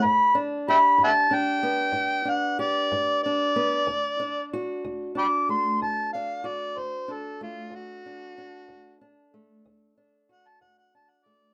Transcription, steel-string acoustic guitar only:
\new Staff \with { instrumentName = "Steel-string acoustic guitar" } { \time 12/8 \key d \major \tempo 4. = 62 << { r8 d'8 g'4 d'8 b4 d'8 g'4 d'8 b8 | r8 d'8 fis'4 d'8 a4 d'8 fis'4 d'8 a8 | r8 d'8 d'4 d'8 a4 d'8 fis'4 d'8 a8 | } \\ { g,4 r8 g,4 r8 g,4 r8 g,4 r8 | d,4 r8 d,4 r8 d,4 r8 d,4 r8 | d,4 r8 d,4 r8 d,4 r8 d,4 r8 | } >> }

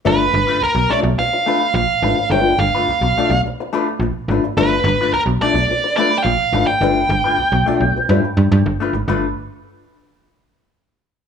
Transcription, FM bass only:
\new Staff \with { instrumentName = "FM bass" } { \clef bass \time 4/4 \key g \mixolydian \tempo 4 = 106 g,,8 g,,16 r16 b,,16 b,,16 r16 b,,16 r4 bes,,16 r16 aes,,16 r16 | g,,8 g,,16 r16 b,,16 b,,16 r16 b,,16 r4 bes,,16 r16 aes,,16 r16 | g,,8 g,,16 r16 b,,16 b,,16 r16 b,,16 r4 bes,,16 r16 aes,,16 r16 | g,,8 g,,16 r16 b,,16 b,,16 r16 b,,16 r16 g,16 r16 g,16 g,16 g,,16 r16 aes,,16 |
g,,8 r2. r8 | }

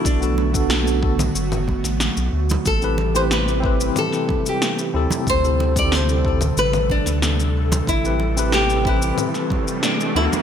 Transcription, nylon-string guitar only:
\new Staff \with { instrumentName = "Nylon-string guitar" } { \time 4/4 \key a \dorian \tempo 4 = 92 d'2. r4 | a'8. c''16 b'4 a'8. g'8 r8. | c''8. d''16 c''4 b'8 d'4. | e'4 g'8 e'4. d'8 e'8 | }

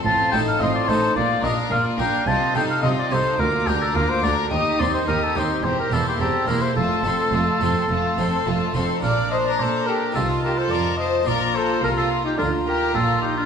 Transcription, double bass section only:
\new Staff \with { instrumentName = "Double bass section" } { \clef bass \time 4/4 \key bes \major \tempo 4 = 107 a,,8 a,,8 a,,8 a,,8 bes,,8 bes,,8 bes,,8 bes,,8 | c,8 c,8 c,8 c,8 d,8 d,8 d,8 d,8 | ees,8 ees,8 ees,8 ees,8 e,,8 e,,8 e,,8 e,,8 | f,,8 f,,8 f,,8 f,,8 f,,8 f,,8 f,,8 f,,8 |
bes,,4 bes,4 c,4 f,4 | bes,,4 c,4 d,4 bes,,4 | }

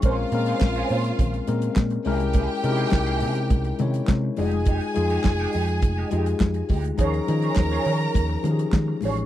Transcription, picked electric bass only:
\new Staff \with { instrumentName = "Picked electric bass" } { \clef bass \time 4/4 \key f \minor \tempo 4 = 104 bes,,8 bes,8 bes,,8 bes,8 bes,,8 bes,8 bes,8 c,8~ | c,8 c8 c,8 c8 c,8 c8 c8 f,,8~ | f,,8 f,8 f,,8 f,8 f,,8 f,8 f,8 d,8 | ees,8 ees8 ees,8 ees8 ees,8 ees8 ees8 a,,8 | }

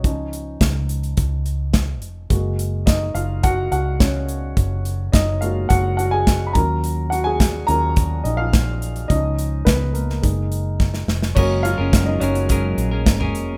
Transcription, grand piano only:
<<
  \new Staff \with { instrumentName = "Grand piano" } { \time 4/4 \key fis \major \tempo 4 = 106 << { r1 | r4 dis''8 eis''8 fis''8 fis''8 cis''8. r16 | r4 dis''8 eis''8 fis''8 fis''16 gis''8~ gis''32 b''32 ais''8~ | ais''8 fis''16 gis''8. ais''4 dis''16 eis''4~ eis''16 |
dis''4 b'8 ais'4. r4 | cis''8 eis''8. dis''16 cis''2 r8 | } \\ { r1 | r4 dis'8 eis'8 fis'8 fis'8 cis'8. r16 | r4 dis'8 eis'8 fis'8 fis'16 gis'8. ais'8~ | ais'8 fis'16 gis'8. ais'4 dis'16 eis'4~ eis'16 |
r4 b8 ais4. r4 | cis'8 eis'8. dis'16 cis'2 r8 | } >> }
  \new Staff \with { instrumentName = "Grand piano" } { \time 4/4 \key fis \major <eis cis' dis'>1 | <gis ais fis'>1 | r4. <gis ais fis'>2 <fis cis' eis'>8~ | <fis cis' eis'>4. <fis cis' eis'>8 r2 |
<eis cis' dis'>4. r8 <gis ais dis'>2 | <gis ais fis'>4. r2 r8 | }
>>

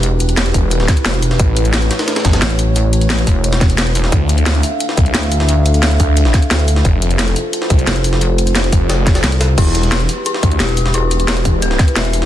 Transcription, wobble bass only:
\new Staff \with { instrumentName = "Wobble bass" } { \clef bass \time 4/4 \key e \phrygian \tempo 4 = 176 e,,4. r4. e,,4 | r2. a,,4~ | a,,4. e,,2~ e,,8 | r2. d,4~ |
d,4. r4. d,4 | r2. f,,4~ | f,,4. r4. c,4 | r2. e,,4~ |
e,,4. r4. e,,4 | }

